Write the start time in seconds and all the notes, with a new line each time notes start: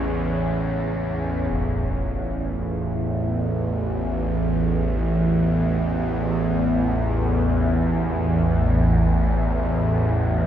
Already playing: A1 E2 C#4 G#4 C#5
1.50 A1 F4 F5, concert bass drum
1.54 E2